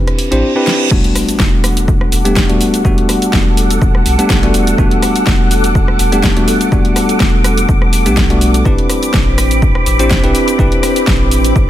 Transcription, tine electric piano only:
0.00 0.29 C4 medium
0.00 0.29 D4 medium
0.00 0.29 E4 medium
0.00 0.29 G4 medium
0.00 0.29 B4 medium
0.31 0.53 C4 medium
0.31 0.53 D4 medium
0.31 0.53 E4 medium
0.31 0.53 G4 medium
0.31 0.53 C5 loud
0.56 0.88 C4 medium
0.56 0.89 D4 medium
0.56 0.89 E4 medium
0.56 0.89 G4 medium
0.56 0.89 B4 loud
0.91 2.22 G3 medium
0.91 2.23 A3 medium
0.91 2.23 B3 medium
0.91 2.23 D4 medium
0.91 2.23 F#4 medium
2.25 2.46 G3 medium
2.25 2.46 A3 medium
2.25 2.46 B3 medium
2.25 2.46 D4 medium
2.25 2.47 G4 loud
2.49 2.82 G3 medium
2.49 2.82 A3 medium
2.49 2.82 B3 medium
2.49 2.82 D4 medium
2.49 2.82 F#4 loud
2.84 4.16 G3 medium
2.84 4.16 A3 medium
2.84 4.16 B3 medium
2.84 4.16 D4 medium
2.84 4.17 F#4 medium
4.18 4.40 G3 medium
4.18 4.40 A3 medium
4.18 4.40 B3 medium
4.18 4.40 D4 medium
4.18 4.40 G4 loud
4.43 4.75 G3 medium
4.43 4.76 A3 medium
4.43 4.76 B3 medium
4.43 4.76 D4 medium
4.43 4.76 F#4 loud
4.78 6.09 G3 medium
4.78 6.10 A3 medium
4.78 6.10 B3 medium
4.78 6.10 D4 medium
4.78 6.10 F#4 medium
6.12 6.33 G3 medium
6.12 6.33 A3 medium
6.12 6.33 B3 medium
6.12 6.34 D4 medium
6.12 6.34 G4 loud
6.36 6.69 G3 medium
6.36 6.69 A3 medium
6.36 6.69 B3 medium
6.36 6.69 D4 medium
6.36 6.69 F#4 loud
6.71 8.03 G3 medium
6.71 8.03 A3 medium
6.71 8.03 B3 medium
6.71 8.04 D4 medium
6.71 8.04 F#4 medium
8.06 8.27 G3 medium
8.06 8.27 A3 medium
8.06 8.27 B3 medium
8.06 8.27 D4 medium
8.06 8.27 G4 loud
8.30 8.63 G3 medium
8.30 8.63 A3 medium
8.30 8.63 B3 medium
8.30 8.63 D4 medium
8.30 8.63 F#4 loud
8.65 9.97 C4 medium
8.65 9.97 D4 medium
8.65 9.97 E4 medium
8.65 9.97 G4 medium
8.65 9.97 B4 medium
9.99 10.20 C4 medium
9.99 10.21 D4 medium
9.99 10.21 E4 medium
9.99 10.21 G4 medium
9.99 10.21 C5 loud
10.23 10.56 C4 loud
10.23 10.56 D4 medium
10.23 10.56 E4 medium
10.23 10.56 G4 medium
10.23 10.57 B4 loud
10.58 11.70 C4 medium
10.58 11.70 D4 medium
10.58 11.70 E4 medium
10.58 11.70 G4 medium
10.58 11.70 B4 medium

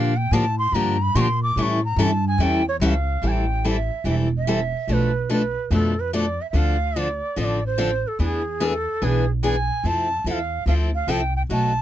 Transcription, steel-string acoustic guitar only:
0.00 0.12 D3 medium
0.00 0.12 F3 medium
0.00 0.13 A#3 medium
0.00 0.13 D4 medium
0.00 0.13 G4 medium
0.33 0.44 D3 medium
0.33 0.44 F3 medium
0.33 0.44 A#3 medium
0.33 0.44 D4 medium
0.33 0.44 G4 medium
0.74 0.96 D3 medium
0.74 0.96 F3 medium
0.74 0.96 A#3 medium
0.74 0.96 D4 medium
0.74 0.96 G4 medium
1.15 1.27 D3 medium
1.15 1.27 F3 medium
1.15 1.27 A#3 medium
1.15 1.27 D4 medium
1.15 1.27 G4 medium
1.57 1.79 E3 medium
1.57 1.79 G3 medium
1.57 1.79 C#4 medium
1.57 1.79 E4 medium
1.57 1.79 A4 medium
1.99 2.10 E3 medium
1.99 2.10 G3 medium
1.99 2.10 C#4 medium
1.99 2.10 E4 medium
1.99 2.10 A4 medium
2.40 2.61 E3 medium
2.40 2.62 G3 medium
2.40 2.62 C#4 medium
2.40 2.62 E4 medium
2.40 2.62 A4 medium
2.81 2.93 E3 medium
2.81 2.93 G3 medium
2.81 2.93 C#4 medium
2.81 2.93 E4 medium
2.81 2.93 A4 loud
3.23 3.44 E3 medium
3.23 3.44 G3 medium
3.23 3.45 C4 soft
3.23 3.45 E4 medium
3.23 3.45 A4 medium
3.64 3.76 E3 medium
3.64 3.76 G3 medium
3.64 3.76 C4 medium
3.64 3.76 E4 medium
3.64 3.76 A4 medium
4.05 4.27 E3 medium
4.05 4.27 G3 medium
4.05 4.27 C4 medium
4.05 4.28 E4 medium
4.05 4.28 A4 medium
4.47 4.59 E3 medium
4.47 4.59 G3 medium
4.47 4.59 C4 medium
4.47 4.59 E4 medium
4.47 4.59 A4 medium
4.88 5.10 B2 soft
4.88 5.10 F3 medium
4.88 5.11 A3 medium
4.88 5.11 D4 medium
4.88 5.11 A4 medium
5.29 5.41 B2 medium
5.29 5.41 F3 medium
5.29 5.41 A3 medium
5.29 5.42 D4 medium
5.29 5.42 A4 medium
5.71 5.93 B2 medium
5.71 5.93 F3 medium
5.71 5.93 A3 medium
5.71 5.94 D4 medium
5.71 5.94 A4 medium
6.13 6.24 B2 medium
6.13 6.24 F3 medium
6.13 6.25 A3 medium
6.13 6.25 D4 medium
6.13 6.25 A4 medium
6.54 6.76 D3 medium
6.54 6.76 F3 medium
6.54 6.76 C4 medium
6.54 6.76 D4 medium
6.54 6.76 A4 medium
6.96 7.07 D3 medium
6.96 7.07 F3 medium
6.96 7.08 C4 medium
6.96 7.08 D4 medium
6.96 7.08 A4 medium
7.36 7.58 D3 medium
7.36 7.59 F3 medium
7.36 7.59 C4 medium
7.36 7.59 D4 medium
7.36 7.59 A4 medium
7.78 7.89 D3 medium
7.78 7.90 F3 medium
7.78 7.90 C4 medium
7.78 7.90 D4 medium
7.78 7.90 A4 medium
8.20 8.41 E3 medium
8.20 8.41 B3 medium
8.20 8.41 D4 medium
8.20 8.42 G#4 medium
8.60 8.72 E3 medium
8.60 8.72 B3 medium
8.60 8.72 D4 medium
8.60 8.73 G#4 medium
9.02 9.24 E3 medium
9.02 9.24 B3 medium
9.02 9.24 D4 medium
9.02 9.24 G#4 medium
9.43 9.55 E3 medium
9.43 9.55 B3 medium
9.43 9.55 D4 medium
9.43 9.55 G#4 medium
9.85 10.07 F3 medium
9.85 10.07 C4 medium
9.85 10.07 E4 medium
9.85 10.07 A4 medium
10.26 10.38 F3 medium
10.26 10.38 C4 medium
10.26 10.38 E4 medium
10.26 10.38 A4 medium
10.67 10.89 F3 medium
10.67 10.89 C4 medium
10.67 10.90 E4 medium
10.67 10.90 A4 medium
11.08 11.20 F3 medium
11.08 11.20 C4 medium
11.08 11.20 E4 medium
11.08 11.21 A4 medium
11.50 11.72 B2 medium
11.50 11.72 F#3 soft
11.50 11.72 A3 medium
11.50 11.72 D#4 medium
11.50 11.72 F#4 medium

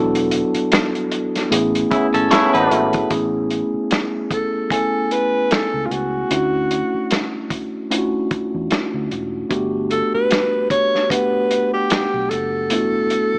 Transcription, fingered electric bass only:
0.00 0.41 E1 loud
0.54 muted fingered electric bass stroke soft
1.52 1.83 A1 medium
2.14 2.28 G#1 medium
2.54 2.68 A1 medium
2.71 3.03 G#1 medium
3.11 3.61 A1 medium
3.74 muted fingered electric bass stroke soft
5.74 5.87 C#2 medium
5.91 6.23 C#2 medium
6.31 6.81 D2 medium
6.94 muted fingered electric bass stroke soft
8.31 muted fingered electric bass stroke soft
8.54 8.68 E2 medium
8.94 9.07 D2 medium
9.11 9.43 E1 medium
9.51 10.01 G1 medium
10.14 muted fingered electric bass stroke soft
12.14 12.27 B1 medium
12.31 12.70 F#1 medium
12.70 13.21 E1 medium
13.34 muted fingered electric bass stroke soft

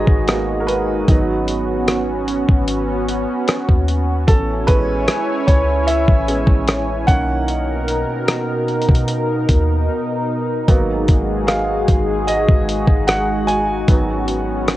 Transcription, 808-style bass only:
0.08 1.04 G#1 medium
1.08 2.44 G#1 loud
2.49 3.25 G#1 loud
3.69 4.26 D#2 loud
4.28 4.67 A1 loud
4.69 5.07 A1 medium
5.48 6.06 C#2 loud
6.08 6.47 A1 loud
6.47 7.05 A1 loud
7.08 8.04 B1 loud
8.89 9.46 B2 loud
9.49 9.89 D#2 loud
10.68 11.07 G#1 loud
11.09 11.85 G#1 loud
11.88 12.46 G#1 loud
12.49 12.87 G#1 medium
12.88 13.84 G#1 loud
13.88 14.77 G#1 loud

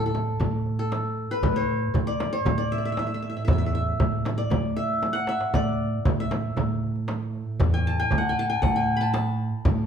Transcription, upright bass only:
0.00 0.31 A2 medium
0.40 1.25 A2 medium
1.43 1.85 A2 loud
1.94 2.37 A2 medium
2.46 3.31 A2 loud
3.48 3.91 E2 loud
4.00 4.42 A2 medium
4.50 5.36 A2 loud
5.54 5.96 A2 loud
6.05 6.48 A2 medium
6.56 7.42 A2 medium
7.60 8.02 E2 loud
8.11 8.54 A2 medium
8.63 9.48 A2 loud
9.65 9.87 A2 loud

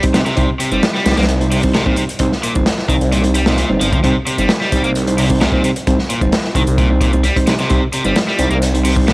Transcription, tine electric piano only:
0.03 0.20 G3 medium
0.03 0.20 C4 medium
0.03 0.20 D#4 medium
0.03 0.20 C5 loud
0.37 0.48 G3 loud
0.37 0.48 C4 medium
0.37 0.48 D#4 medium
0.37 0.48 C5 loud
0.72 0.82 G3 medium
0.72 0.82 C4 medium
0.72 0.82 D#4 medium
0.72 0.82 C5 medium
1.06 1.38 G3 medium
1.06 1.38 C4 medium
1.06 1.38 D#4 medium
1.06 1.38 C5 medium
1.40 1.57 G3 medium
1.40 1.57 C4 medium
1.40 1.57 D#4 medium
1.40 1.57 C5 medium
1.63 1.74 G3 medium
1.63 1.74 C4 medium
1.63 1.74 D#4 medium
1.63 1.74 C5 medium
1.86 2.03 G3 medium
1.86 2.03 C4 medium
1.86 2.03 D#4 medium
1.86 2.03 C5 loud
2.20 2.31 G3 medium
2.20 2.31 C4 medium
2.20 2.31 D#4 medium
2.20 2.31 C5 loud
2.55 2.66 G3 medium
2.55 2.66 C4 medium
2.55 2.66 D#4 medium
2.55 2.66 C5 medium
2.89 3.21 G3 medium
2.89 3.21 C4 medium
2.89 3.21 D#4 medium
2.89 3.21 C5 medium
3.24 3.41 G3 medium
3.24 3.41 C4 medium
3.24 3.41 D#4 medium
3.24 3.41 C5 medium
3.47 3.57 G3 medium
3.47 3.57 C4 medium
3.47 3.57 D#4 medium
3.47 3.57 C5 medium
3.70 3.87 G3 medium
3.70 3.87 C4 medium
3.70 3.87 D#4 medium
3.70 3.87 C5 loud
4.04 4.15 G3 loud
4.04 4.15 C4 medium
4.04 4.15 D#4 medium
4.04 4.15 C5 loud
4.39 4.49 G3 medium
4.39 4.49 C4 medium
4.39 4.49 D#4 medium
4.39 4.49 C5 medium
4.72 5.04 G3 medium
4.72 5.04 C4 medium
4.72 5.04 D#4 medium
4.72 5.04 C5 medium
5.07 5.24 G3 medium
5.07 5.24 C4 medium
5.07 5.24 D#4 medium
5.07 5.24 C5 medium
5.30 5.40 G3 medium
5.30 5.40 C4 medium
5.30 5.40 D#4 medium
5.30 5.40 C5 medium
5.53 5.70 G3 medium
5.53 5.70 C4 medium
5.53 5.70 D#4 medium
5.53 5.70 C5 loud
5.87 5.98 G3 medium
5.87 5.98 C4 medium
5.87 5.98 D#4 medium
5.87 5.98 C5 loud
6.22 6.32 G3 medium
6.22 6.32 C4 medium
6.22 6.32 D#4 medium
6.22 6.32 C5 medium
6.56 6.88 G3 medium
6.56 6.88 C4 medium
6.56 6.88 D#4 medium
6.56 6.88 C5 medium
6.90 7.07 G3 medium
6.90 7.07 C4 medium
6.90 7.07 D#4 medium
6.90 7.07 C5 medium
7.13 7.24 G3 medium
7.13 7.24 C4 medium
7.13 7.24 D#4 medium
7.13 7.24 C5 medium
7.36 7.53 G3 medium
7.36 7.53 C4 medium
7.36 7.53 D#4 medium
7.36 7.53 C5 loud
7.70 7.81 G3 loud
7.70 7.81 C4 medium
7.70 7.81 D#4 medium
7.70 7.81 C5 loud
8.05 8.15 G3 medium
8.05 8.15 C4 medium
8.05 8.15 D#4 medium
8.05 8.15 C5 medium
8.39 8.71 G3 medium
8.39 8.71 C4 medium
8.39 8.71 D#4 medium
8.39 8.71 C5 medium
8.74 8.91 G3 medium
8.74 8.91 C4 medium
8.74 8.91 D#4 medium
8.74 8.91 C5 medium
8.97 9.07 G3 medium
8.97 9.07 C4 medium
8.97 9.07 D#4 medium
8.97 9.07 C5 medium

